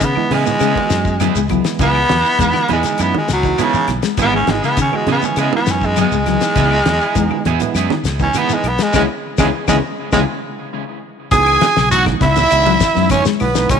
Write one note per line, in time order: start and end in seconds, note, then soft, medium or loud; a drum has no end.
0.01 0.13 C#3 medium
0.01 0.22 D#3 medium
0.01 0.31 B3 medium
0.01 muted clean electric guitar stroke soft
0.01 kick medium
0.01 closed hi-hat medium
0.01 high conga soft
0.01 shekere medium
0.15 0.32 E3 medium
0.15 0.32 G#3 medium
0.15 0.32 B3 medium
0.15 0.33 E4 medium
0.15 muted fingered electric bass stroke soft
0.15 muted clean electric guitar stroke soft
0.15 high conga medium
0.15 claves medium
0.31 0.43 C#3 medium
0.31 0.52 E3 medium
0.31 1.48 G#3 loud
0.31 0.46 B3 medium
0.31 0.45 E4 medium
0.31 0.44 G#4 medium
0.31 open hi-hat medium
0.31 low conga medium
0.31 shekere soft
0.45 0.62 E3 medium
0.45 0.62 G#3 medium
0.45 0.62 B3 medium
0.45 0.62 D#4 medium
0.45 muted clean electric guitar stroke soft
0.45 high conga medium
0.45 low conga medium
0.45 shekere medium
0.60 0.73 C#3 loud
0.60 0.82 G#3 medium
0.60 0.76 B3 medium
0.60 0.75 E4 medium
0.60 0.75 G#4 medium
0.60 closed hi-hat medium
0.60 claves medium
0.60 shekere medium
0.74 1.15 E3 medium
0.74 1.15 G#3 medium
0.74 1.16 B3 medium
0.74 1.16 F#4 medium
0.74 muted clean electric guitar stroke soft
0.74 kick medium
0.74 high conga medium
0.90 1.27 F#2 medium
0.90 1.12 E3 medium
0.90 snare medium
0.90 closed hi-hat medium
0.90 shekere medium
1.05 muted clean electric guitar stroke soft
1.05 kick medium
1.05 shekere soft
1.20 1.31 F#3 medium
1.20 1.38 B3 medium
1.20 1.39 E4 medium
1.20 1.39 G#4 medium
1.20 closed hi-hat medium
1.20 high conga medium
1.20 claves medium
1.20 shekere medium
1.35 1.60 C#2 medium
1.35 1.46 G#3 medium
1.35 shekere medium
1.49 1.98 E3 medium
1.49 1.61 F#3 medium
1.49 1.98 G#3 medium
1.49 1.99 B3 medium
1.49 1.99 E4 medium
1.49 muted clean electric guitar stroke soft
1.49 kick medium
1.49 closed hi-hat soft
1.49 high conga medium
1.49 claves medium
1.49 shekere soft
1.64 1.76 E3 medium
1.64 muted clean electric guitar stroke soft
1.64 snare medium
1.64 closed hi-hat soft
1.64 shekere medium
1.79 2.04 C#2 medium
1.79 2.01 C#3 medium
1.79 1.98 B3 medium
1.79 2.68 B3 loud
1.79 1.98 E4 medium
1.79 1.98 G#4 medium
1.79 kick medium
1.79 closed hi-hat medium
1.79 high conga soft
1.79 low conga medium
1.79 shekere medium
1.95 claves medium
2.09 2.22 E2 medium
2.09 2.31 E3 medium
2.09 muted clean electric guitar stroke soft
2.09 snare medium
2.09 closed hi-hat medium
2.09 high conga loud
2.24 2.39 E4 medium
2.24 snare soft
2.24 shekere soft
2.39 2.51 E2 loud
2.39 2.63 E3 medium
2.39 2.64 G#3 medium
2.39 2.50 G#3 medium
2.39 2.64 B3 medium
2.39 2.64 D#4 medium
2.39 muted clean electric guitar stroke soft
2.39 kick medium
2.39 closed hi-hat medium
2.39 shekere medium
2.54 2.65 E3 medium
2.54 muted clean electric guitar stroke soft
2.54 high conga medium
2.54 claves medium
2.68 2.82 E2 medium
2.68 2.91 E3 medium
2.68 3.03 G#3 medium
2.68 2.84 B3 medium
2.68 2.84 E4 medium
2.68 2.83 G#4 medium
2.68 closed hi-hat soft
2.68 low conga medium
2.68 shekere soft
2.83 3.16 E3 medium
2.83 3.16 G#3 medium
2.83 3.17 B3 medium
2.83 3.17 D#4 medium
2.83 muted clean electric guitar stroke soft
2.83 muted fingered electric bass stroke soft
2.83 snare soft
2.83 closed hi-hat medium
2.83 high conga medium
2.83 shekere medium
2.98 3.12 F#2 loud
2.98 3.14 B3 medium
2.98 3.14 E4 medium
2.98 muted clean electric guitar stroke medium
2.98 closed hi-hat medium
2.98 claves medium
2.98 shekere medium
3.14 3.35 D#3 medium
3.14 3.30 G#3 medium
3.14 muted clean electric guitar stroke soft
3.14 muted fingered electric bass stroke soft
3.14 high conga medium
3.28 3.53 C#2 medium
3.28 snare medium
3.28 closed hi-hat soft
3.28 shekere medium
3.33 3.64 F#3 loud
3.43 3.52 E3 medium
3.43 3.65 E3 medium
3.43 3.52 G#3 medium
3.43 3.52 B3 medium
3.43 3.53 D#4 medium
3.43 muted clean electric guitar stroke soft
3.43 kick medium
3.43 shekere soft
3.58 3.91 E3 medium
3.58 3.91 G#3 medium
3.58 3.76 B3 medium
3.58 3.91 B3 medium
3.58 3.92 D#4 medium
3.58 3.76 E4 medium
3.58 3.77 G#4 medium
3.58 closed hi-hat medium
3.58 high conga medium
3.58 claves medium
3.58 shekere medium
3.62 3.89 C#3 loud
3.74 3.95 E3 medium
3.74 muted fingered electric bass stroke soft
3.74 shekere medium
3.88 4.00 B1 medium
3.88 muted clean electric guitar stroke soft
3.88 snare soft
3.88 closed hi-hat medium
3.88 high conga medium
3.88 claves medium
3.88 shekere soft
4.03 4.24 G#3 medium
4.03 muted clean electric guitar stroke soft
4.03 snare medium
4.03 closed hi-hat medium
4.03 shekere medium
4.17 4.42 G#1 medium
4.17 4.58 E3 medium
4.17 4.59 G#3 medium
4.17 4.36 B3 medium
4.17 4.59 B3 medium
4.17 4.59 D#4 medium
4.17 4.36 E4 medium
4.17 4.36 G#4 loud
4.17 kick medium
4.17 closed hi-hat medium
4.17 high conga soft
4.17 low conga medium
4.17 shekere medium
4.22 4.34 B3 loud
4.33 4.44 G#3 medium
4.33 4.52 C#4 medium
4.33 claves medium
4.47 4.60 G#1 medium
4.47 4.59 E3 medium
4.47 4.63 G#3 medium
4.47 muted clean electric guitar stroke soft
4.47 snare medium
4.47 closed hi-hat medium
4.47 high conga medium
4.62 4.74 C#3 medium
4.62 4.78 B3 medium
4.62 4.78 E4 soft
4.62 4.77 G#4 medium
4.62 snare soft
4.62 shekere soft
4.77 4.90 C#3 medium
4.77 4.99 D#3 medium
4.77 muted clean electric guitar stroke soft
4.77 kick medium
4.77 closed hi-hat medium
4.77 shekere medium
4.81 4.97 C#4 medium
4.92 5.08 E3 medium
4.92 5.09 G#3 medium
4.92 5.08 G#3 medium
4.92 5.09 B3 medium
4.92 5.09 F#4 medium
4.92 muted fingered electric bass stroke soft
4.92 muted clean electric guitar stroke soft
4.92 high conga medium
4.92 claves medium
5.07 5.19 C#3 medium
5.07 5.29 E3 medium
5.07 5.23 B3 medium
5.07 5.23 E4 medium
5.07 5.22 G#4 medium
5.07 closed hi-hat medium
5.07 low conga medium
5.07 shekere soft
5.11 5.27 B3 loud
5.22 5.38 E3 medium
5.22 5.38 G#3 medium
5.22 5.39 B3 medium
5.22 5.39 C#4 medium
5.22 5.38 C#4 medium
5.22 muted clean electric guitar stroke soft
5.22 high conga medium
5.22 shekere medium
5.36 5.49 C#3 loud
5.36 5.53 G#3 loud
5.36 5.52 B3 medium
5.36 5.52 E4 medium
5.36 5.51 G#4 medium
5.36 muted clean electric guitar stroke medium
5.36 closed hi-hat medium
5.36 high conga soft
5.36 claves medium
5.36 shekere medium
5.52 5.92 E3 medium
5.52 5.92 G#3 medium
5.52 5.93 B3 medium
5.52 5.93 D#4 medium
5.52 muted clean electric guitar stroke medium
5.52 high conga medium
5.56 5.73 B3 loud
5.66 6.04 F#2 medium
5.66 5.88 E3 medium
5.66 snare medium
5.66 closed hi-hat medium
5.66 shekere medium
5.71 5.87 C#4 medium
5.81 5.97 G#3 loud
5.81 muted clean electric guitar stroke soft
5.81 kick medium
5.81 shekere soft
5.96 6.07 F#3 medium
5.96 6.15 B3 medium
5.96 6.15 G#4 medium
5.96 closed hi-hat medium
5.96 high conga medium
5.96 claves medium
5.96 shekere medium
6.01 7.73 G#3 loud
6.12 6.36 C#2 medium
6.12 6.23 G#3 medium
6.12 shekere medium
6.26 6.75 E3 medium
6.26 6.38 F#3 medium
6.26 6.75 G#3 medium
6.26 6.75 B3 medium
6.26 6.75 D#4 medium
6.26 muted clean electric guitar stroke soft
6.26 snare soft
6.26 closed hi-hat medium
6.26 high conga medium
6.26 claves medium
6.26 shekere soft
6.41 6.52 E3 medium
6.41 muted clean electric guitar stroke soft
6.41 snare medium
6.41 closed hi-hat medium
6.41 shekere medium
6.55 6.80 C#2 loud
6.55 6.77 C#3 medium
6.55 6.74 B3 medium
6.55 6.74 E4 loud
6.55 6.75 G#4 medium
6.55 kick medium
6.55 closed hi-hat medium
6.55 high conga soft
6.55 low conga medium
6.55 shekere medium
6.71 claves medium
6.85 6.98 E2 medium
6.85 7.07 E3 medium
6.85 muted clean electric guitar stroke soft
6.85 snare medium
6.85 closed hi-hat medium
6.85 high conga medium
7.01 7.17 E4 medium
7.01 7.15 G#4 medium
7.01 shekere soft
7.15 7.28 E2 loud
7.15 7.40 E3 medium
7.15 7.26 G#3 medium
7.15 7.40 G#3 medium
7.15 7.40 B3 medium
7.15 7.40 D#4 loud
7.15 muted clean electric guitar stroke soft
7.15 kick medium
7.15 closed hi-hat medium
7.15 shekere medium
7.30 7.41 E3 medium
7.30 muted clean electric guitar stroke soft
7.30 high conga medium
7.30 claves medium
7.45 7.58 E2 medium
7.45 7.67 E3 medium
7.45 7.61 B3 medium
7.45 7.60 E4 loud
7.45 7.60 G#4 loud
7.45 closed hi-hat medium
7.45 low conga medium
7.45 shekere soft
7.60 7.92 E3 medium
7.60 7.93 G#3 medium
7.60 7.93 B3 medium
7.60 7.93 E4 loud
7.60 muted fingered electric bass stroke soft
7.60 muted clean electric guitar stroke medium
7.60 closed hi-hat medium
7.60 low conga medium
7.60 shekere medium
7.75 7.87 F#2 loud
7.75 7.91 B3 medium
7.75 7.91 E4 medium
7.75 7.90 G#4 medium
7.75 snare soft
7.75 closed hi-hat medium
7.75 high conga soft
7.75 claves medium
7.75 shekere medium
7.90 8.11 D#3 medium
7.90 muted clean electric guitar stroke soft
7.90 snare soft
7.90 high conga medium
8.04 8.29 C#2 medium
8.04 snare medium
8.04 closed hi-hat medium
8.04 shekere medium
8.19 8.28 E3 medium
8.19 8.41 E3 medium
8.19 8.28 G#3 medium
8.19 8.28 B3 medium
8.19 8.40 C#4 medium
8.19 8.29 D#4 medium
8.19 muted clean electric guitar stroke soft
8.19 kick medium
8.19 shekere soft
8.34 8.67 E3 medium
8.34 8.67 G#3 medium
8.34 8.67 B3 medium
8.34 8.53 B3 medium
8.34 8.68 D#4 medium
8.34 8.53 E4 medium
8.34 8.54 G#4 loud
8.34 closed hi-hat medium
8.34 high conga medium
8.34 claves medium
8.34 shekere medium
8.38 8.55 B3 loud
8.49 8.71 E3 medium
8.49 8.69 G#3 medium
8.49 muted fingered electric bass stroke soft
8.49 shekere medium
8.64 8.76 B1 medium
8.64 8.84 B3 loud
8.64 muted clean electric guitar stroke soft
8.64 closed hi-hat medium
8.64 claves medium
8.64 shekere soft
8.79 8.90 G#3 medium
8.79 8.94 G#3 loud
8.79 muted clean electric guitar stroke soft
8.79 snare medium
8.79 closed hi-hat medium
8.79 shekere medium
8.93 9.05 C#2 medium
8.93 9.04 C#3 medium
8.93 9.05 E3 medium
8.93 9.04 G#3 loud
8.93 9.02 G#3 loud
8.93 9.04 G#3 medium
8.93 9.04 B3 medium
8.93 9.04 C#4 medium
8.93 9.05 C#4 loud
8.93 9.05 E4 loud
8.93 9.04 G#4 loud
8.93 kick medium
8.93 snare medium
8.93 high conga loud
8.93 claves medium
8.93 shekere medium
9.38 9.50 C#2 loud
9.38 9.49 C#3 loud
9.38 9.49 E3 loud
9.38 9.48 G#3 loud
9.38 9.46 G#3 medium
9.38 9.49 G#3 loud
9.38 9.48 B3 loud
9.38 9.48 C#4 medium
9.38 9.49 C#4 medium
9.38 9.49 E4 loud
9.38 9.49 G#4 loud
9.38 kick medium
9.38 snare medium
9.38 high conga loud
9.38 claves loud
9.38 shekere loud
9.68 9.79 C#2 loud
9.68 9.78 C#3 loud
9.68 9.78 E3 loud
9.68 9.78 G#3 loud
9.68 9.76 G#3 loud
9.68 9.78 G#3 loud
9.68 9.78 B3 loud
9.68 9.78 C#4 loud
9.68 9.78 C#4 medium
9.68 9.78 E4 medium
9.68 9.79 G#4 medium
9.68 kick medium
9.68 snare medium
9.68 high conga loud
9.68 claves loud
9.68 shekere medium
10.12 10.24 C#2 loud
10.12 10.23 C#3 loud
10.12 10.23 E3 loud
10.12 10.22 G#3 medium
10.12 10.20 G#3 loud
10.12 10.23 G#3 loud
10.12 10.22 B3 medium
10.12 10.23 C#4 medium
10.12 10.23 E4 medium
10.12 10.23 G#4 medium
10.12 kick medium
10.12 snare medium
10.12 high conga loud
10.12 claves medium
10.12 shekere loud
11.31 11.56 C#2 medium
11.31 11.64 E3 medium
11.31 11.64 G#3 medium
11.31 11.64 B3 medium
11.31 11.65 D#4 medium
11.31 11.88 G#4 loud
11.31 11.88 G#5 loud
11.31 kick loud
11.31 closed hi-hat medium
11.31 high conga soft
11.31 low conga medium
11.31 shekere medium
11.46 closed hi-hat soft
11.46 claves medium
11.61 11.72 E3 medium
11.61 snare medium
11.61 closed hi-hat medium
11.61 high conga medium
11.76 12.14 B1 medium
11.76 11.98 C#3 medium
11.76 snare medium
11.76 closed hi-hat soft
11.76 shekere soft
11.90 12.23 E3 medium
11.90 12.24 G#3 medium
11.90 12.24 B3 medium
11.90 12.24 D#4 medium
11.90 12.05 F#4 loud
11.90 12.05 F#5 loud
11.90 closed hi-hat medium
11.90 high conga soft
11.90 shekere loud
12.06 kick medium
12.06 snare soft
12.06 closed hi-hat soft
12.06 high conga medium
12.06 claves medium
12.21 12.46 C#2 medium
12.21 12.32 C#3 medium
12.21 13.07 E4 loud
12.21 13.08 E5 loud
12.21 kick medium
12.21 snare soft
12.21 closed hi-hat medium
12.21 low conga loud
12.21 shekere soft
12.36 12.57 E3 medium
12.36 closed hi-hat soft
12.36 high conga medium
12.36 low conga medium
12.36 shekere medium
12.51 12.76 C#2 loud
12.51 12.75 E3 medium
12.51 12.75 G#3 medium
12.51 12.76 B3 medium
12.51 12.76 D#4 medium
12.51 closed hi-hat medium
12.51 high conga soft
12.51 claves medium
12.51 shekere medium
12.66 12.77 F#3 medium
12.66 high conga medium
12.80 12.91 E3 medium
12.80 kick medium
12.80 snare medium
12.80 closed hi-hat medium
12.80 shekere loud
12.95 13.21 F#2 medium
12.95 13.27 E3 medium
12.95 13.17 F#3 medium
12.95 13.28 G#3 medium
12.95 13.28 B3 medium
12.95 13.28 D#4 medium
12.95 snare soft
12.95 shekere soft
13.10 13.25 C#4 medium
13.10 13.25 C#5 medium
13.10 kick medium
13.10 closed hi-hat medium
13.10 high conga medium
13.10 claves medium
13.10 shekere medium
13.25 13.46 G#3 medium
13.25 snare medium
13.25 shekere medium
13.40 13.66 B1 medium
13.40 13.68 B3 medium
13.40 13.69 B4 medium
13.40 open hi-hat medium
13.40 high conga medium
13.40 claves medium
13.40 shekere soft
13.55 13.79 E3 medium
13.55 13.79 G#3 medium
13.55 13.80 B3 medium
13.55 13.80 D#4 medium
13.55 snare medium
13.55 closed hi-hat soft
13.55 shekere medium
13.69 13.80 C#2 loud
13.69 13.80 C#4 loud
13.69 13.80 C#5 medium
13.69 kick loud
13.69 closed hi-hat medium
13.69 high conga soft
13.69 low conga medium
13.69 shekere medium